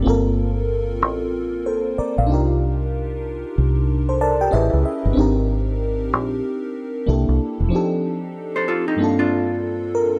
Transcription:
0.02 fm electric piano A#3 C4 F4
0.07 fingered electric bass G1, fm electric piano A4 A#4
1.02 fingered electric bass A1
1.66 fm electric piano A4 C5
1.98 fm electric piano A#4 D5, muted fingered electric bass stroke
2.18 fingered electric bass A#1, fm electric piano D5 F5
2.27 fingered electric bass C2, fm electric piano D4 D#4 F4
2.32 fm electric piano G4 A#4
3.58 fingered electric bass C2
4.09 fm electric piano A4 C5
4.21 fm electric piano A#4 D5 A5
4.41 fm electric piano G4 A#4 G5
4.51 fingered electric bass A1, fm electric piano C#4 E4 G#4 B4 D#5 E5
4.73 fingered electric bass C#2
4.85 fm electric piano E5
5.05 fingered electric bass G1
5.13 fingered electric bass G#1, fm electric piano C4 D4 D#4
5.19 fm electric piano G4 A#4
6.13 fingered electric bass A#1
7.06 fingered electric bass C2, fm electric piano A#3 D4 E4 G4 A4
7.29 fingered electric bass C2
7.60 fingered electric bass E1
7.69 fm electric piano F3 C4 D4
7.73 fm electric piano D#4 G4 A4
8.56 hollow-body jazz guitar A4 C5
8.68 hollow-body jazz guitar F4 A4
8.88 hollow-body jazz guitar D#4 G4
8.96 fm electric piano G2 A#3 C4
9.01 fm electric piano D4 F4 A4
9.19 hollow-body jazz guitar D4 F4
9.95 fm electric piano A#4

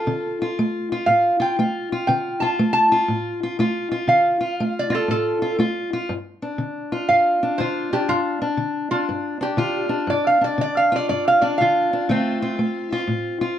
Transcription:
Already playing: steel-string acoustic guitar F4, resonator guitar played with a steel bar A4
0.07 steel-string acoustic guitar D3
0.42 steel-string acoustic guitar F4
0.59 steel-string acoustic guitar A3
0.92 steel-string acoustic guitar F4
1.06 steel-string acoustic guitar A2, resonator guitar played with a steel bar F5
1.40 steel-string acoustic guitar F4, resonator guitar played with a steel bar G5
1.59 steel-string acoustic guitar A3 F4
1.92 steel-string acoustic guitar F4
2.07 steel-string acoustic guitar D3, resonator guitar played with a steel bar G5
2.40 steel-string acoustic guitar F4, resonator guitar played with a steel bar A5
2.59 steel-string acoustic guitar A3
2.73 resonator guitar played with a steel bar A5
2.92 steel-string acoustic guitar F4
3.08 steel-string acoustic guitar A2
3.43 steel-string acoustic guitar F4
3.59 steel-string acoustic guitar A3 F4
3.92 steel-string acoustic guitar F4
4.07 steel-string acoustic guitar D3, resonator guitar played with a steel bar F5
4.41 steel-string acoustic guitar F4
4.60 steel-string acoustic guitar A3
4.79 resonator guitar played with a steel bar D5
4.90 steel-string acoustic guitar F4
4.95 resonator guitar played with a steel bar A4
5.08 steel-string acoustic guitar A2, resonator guitar played with a steel bar A4
5.42 steel-string acoustic guitar F4
5.59 steel-string acoustic guitar A3 F4
5.93 steel-string acoustic guitar F4
6.09 steel-string acoustic guitar G2
6.42 steel-string acoustic guitar D4
6.58 steel-string acoustic guitar D3
6.92 steel-string acoustic guitar F4
7.09 steel-string acoustic guitar G2, resonator guitar played with a steel bar F5
7.43 steel-string acoustic guitar D4
7.58 steel-string acoustic guitar D3 F4, resonator guitar played with a steel bar C5
7.93 steel-string acoustic guitar D4, resonator guitar played with a steel bar G4
8.09 steel-string acoustic guitar G2, resonator guitar played with a steel bar F4
8.42 steel-string acoustic guitar D4
8.57 steel-string acoustic guitar D3
8.91 steel-string acoustic guitar D4, resonator guitar played with a steel bar F4
9.09 steel-string acoustic guitar G2
9.41 steel-string acoustic guitar D4, resonator guitar played with a steel bar G4
9.57 steel-string acoustic guitar D3 F4
9.89 steel-string acoustic guitar D4
10.07 steel-string acoustic guitar G2, resonator guitar played with a steel bar D5
10.27 resonator guitar played with a steel bar F5
10.41 steel-string acoustic guitar D4, resonator guitar played with a steel bar D5
10.58 steel-string acoustic guitar D3, resonator guitar played with a steel bar D5
10.77 resonator guitar played with a steel bar F5
10.92 steel-string acoustic guitar F4, resonator guitar played with a steel bar D5
11.09 steel-string acoustic guitar G2, resonator guitar played with a steel bar D5
11.28 resonator guitar played with a steel bar F5
11.41 steel-string acoustic guitar D4, resonator guitar played with a steel bar D5
11.58 steel-string acoustic guitar D3 F4, resonator guitar played with a steel bar F5
11.93 steel-string acoustic guitar D4
12.09 steel-string acoustic guitar D3 A3 C4 F4
12.42 steel-string acoustic guitar F4
12.59 steel-string acoustic guitar A3
12.92 steel-string acoustic guitar F4
13.08 steel-string acoustic guitar A2
13.41 steel-string acoustic guitar F4

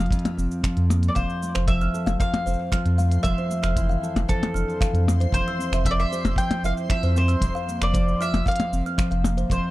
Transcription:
Already playing: nylon-string guitar F3 A#3 F4, mandolin F5
0.00 shaker
0.06 closed hi-hat
0.11 nylon-string guitar F2, kick, closed hi-hat, shaker
0.19 closed hi-hat
0.25 closed hi-hat, percussion blips, shaker
0.37 sub bass F1, nylon-string guitar C4, shaker
0.51 shaker
0.64 nylon-string guitar F3, finger snap, kick, closed hi-hat, shaker
0.77 sub bass F2, closed hi-hat, shaker
0.90 nylon-string guitar A#3, percussion blips, shaker
1.03 closed hi-hat, shaker
1.08 mandolin D5
1.15 sub bass F1, nylon-string guitar F2, mandolin C5, synth texture C5 C6, kalimba F5, kick, closed hi-hat, shaker
1.30 shaker
1.42 nylon-string guitar A3, shaker
1.55 sub bass F1, kalimba C5, finger snap, closed hi-hat, shaker
1.68 nylon-string guitar F3, mandolin E5, kick, closed hi-hat, shaker
1.81 kalimba F6, shaker
1.94 nylon-string guitar A4, shaker
2.06 sub bass F1, kalimba F5, closed hi-hat, percussion blips, shaker
2.20 nylon-string guitar F2, mandolin F5, kick, closed hi-hat, shaker
2.34 closed hi-hat, percussion blips, shaker
2.46 sub bass F1, nylon-string guitar C4, kalimba C5, shaker
2.54 shaker
2.72 nylon-string guitar F3, kalimba F6, finger snap, kick, closed hi-hat, shaker
2.85 sub bass F2, closed hi-hat, shaker
2.98 nylon-string guitar A3, kalimba F5, shaker
3.12 closed hi-hat, shaker
3.23 sub bass F1, nylon-string guitar F2, mandolin E5, kick, closed hi-hat, shaker
3.38 kalimba C5, shaker
3.50 nylon-string guitar A3, shaker
3.63 sub bass F1, kalimba F6, finger snap, closed hi-hat, shaker
3.76 nylon-string guitar E3, kick, closed hi-hat, shaker
3.89 kalimba F5, shaker
4.03 nylon-string guitar A4, shaker
4.15 sub bass F1, closed hi-hat, percussion blips, shaker
4.28 nylon-string guitar F2, mandolin A4, kalimba C5, kick, closed hi-hat, shaker
4.43 closed hi-hat, percussion blips, shaker
4.54 sub bass F1, nylon-string guitar D4, kalimba F6, shaker
4.69 shaker
4.81 nylon-string guitar E3, kalimba F5, finger snap, kick, closed hi-hat, shaker
4.93 sub bass F2, closed hi-hat, shaker
5.07 nylon-string guitar A3, percussion blips, shaker
5.20 kalimba C5, closed hi-hat, shaker
5.32 sub bass F1, nylon-string guitar F2, mandolin C5, kick, closed hi-hat, shaker
5.48 kalimba E6, shaker
5.59 nylon-string guitar C4, shaker
5.71 sub bass F1, kalimba E5, finger snap, closed hi-hat, shaker
5.85 nylon-string guitar F3, mandolin E5, kick, closed hi-hat, shaker
5.91 mandolin D5
6.00 mandolin E5, shaker
6.12 nylon-string guitar G4, kalimba C5, shaker
6.24 sub bass F1, closed hi-hat, percussion blips, shaker
6.36 nylon-string guitar F2, mandolin G5, kalimba E6, kick, closed hi-hat, shaker
6.51 closed hi-hat, percussion blips, shaker
6.63 sub bass F1, nylon-string guitar E4, kalimba E5, mandolin F5, shaker
6.77 shaker
6.90 nylon-string guitar F3, mandolin E5, finger snap, kick, closed hi-hat, shaker
7.03 sub bass F2, kalimba C5, closed hi-hat, shaker
7.16 nylon-string guitar C4, mandolin C5, shaker
7.28 kalimba E6, closed hi-hat, shaker
7.41 sub bass F1, nylon-string guitar F2, kick, closed hi-hat, shaker
7.55 kalimba F5, shaker
7.68 nylon-string guitar A#3, shaker
7.81 sub bass F1, mandolin D5, finger snap, shaker
7.94 nylon-string guitar F3, kalimba C5, kick, closed hi-hat, shaker
8.08 shaker
8.20 nylon-string guitar F4, mandolin E5, kalimba F6, shaker
8.33 sub bass F1, closed hi-hat, percussion blips, shaker
8.46 nylon-string guitar F2, kalimba F5, mandolin F5, kick, closed hi-hat, shaker
8.51 closed hi-hat
8.56 closed hi-hat
8.60 closed hi-hat, percussion blips, shaker
8.72 sub bass F1, nylon-string guitar C4, shaker
8.86 kalimba F6, shaker
8.98 nylon-string guitar F3, kalimba F5, finger snap, kick, closed hi-hat, shaker
9.11 sub bass F1, kalimba F5, closed hi-hat, shaker
9.24 nylon-string guitar A#3, percussion blips, shaker
9.37 kalimba C5, closed hi-hat, shaker
9.50 sub bass F1, nylon-string guitar F2, mandolin C5, kick, closed hi-hat, shaker

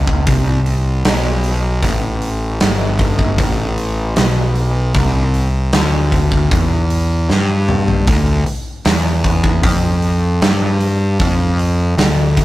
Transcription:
Already playing: picked electric bass C#2
0.07 kick
0.27 picked electric bass C2, kick, open hi-hat
0.66 open hi-hat
1.05 picked electric bass B1, snare, open hi-hat
1.44 open hi-hat
1.83 picked electric bass A1, kick, open hi-hat
2.22 open hi-hat
2.60 picked electric bass G1, snare, open hi-hat
2.99 kick, open hi-hat
3.19 kick
3.38 picked electric bass A1, kick, open hi-hat
3.78 open hi-hat
4.16 picked electric bass B1, snare, open hi-hat
4.55 open hi-hat
4.94 picked electric bass C2, kick, open hi-hat
5.34 open hi-hat
5.73 picked electric bass D2, snare, open hi-hat
6.12 kick, open hi-hat
6.32 kick
6.51 picked electric bass E2, kick, open hi-hat
6.90 open hi-hat
7.29 picked electric bass G2, snare
7.69 mid tom
7.88 floor tom
8.07 picked electric bass D2, kick, open hi-hat
8.46 muted picked electric bass stroke, open hi-hat
8.85 picked electric bass E2, snare, open hi-hat
9.24 kick, open hi-hat
9.44 kick
9.63 picked electric bass F2, kick, open hi-hat
10.02 open hi-hat
10.42 picked electric bass G2, snare, open hi-hat
10.81 open hi-hat
11.20 picked electric bass F2, kick, open hi-hat
11.59 open hi-hat
11.98 picked electric bass D2, snare, open hi-hat
12.37 kick, open hi-hat

